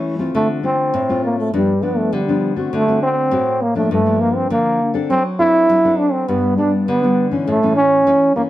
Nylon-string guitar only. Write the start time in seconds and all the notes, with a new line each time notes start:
Already playing: E3 A3 C#4 E4
0.19 A3 C4 F4
0.35 D3
0.63 A3 C4 F4
0.94 A2
1.09 A3 C4 F4
1.53 G2 F3 B3 D4
1.82 F3 B3 D4
2.13 D3
2.28 F3 B3 D4
2.56 A3 C4 F#4
2.73 D3
2.88 A3 C4 F#4
3.31 A2 A3 C4 F#4
3.75 F3 A#3 D4
3.91 G2
4.06 F3 A#3 D4
4.50 D3 F3 A#3 D4
4.94 C4 D4 A4
5.10 F#3
5.39 C4 D4 A4
5.69 F#3
5.85 C4 D4 A4
6.28 G2 G3 B3 D4
6.58 G3 B3 D4
6.88 D3
7.03 G3 B3 D4
7.31 E3 A3 C#4
7.47 A2
7.63 E3 A3 C#4
8.07 E3 A3 C#4
8.36 E3 A3 C#4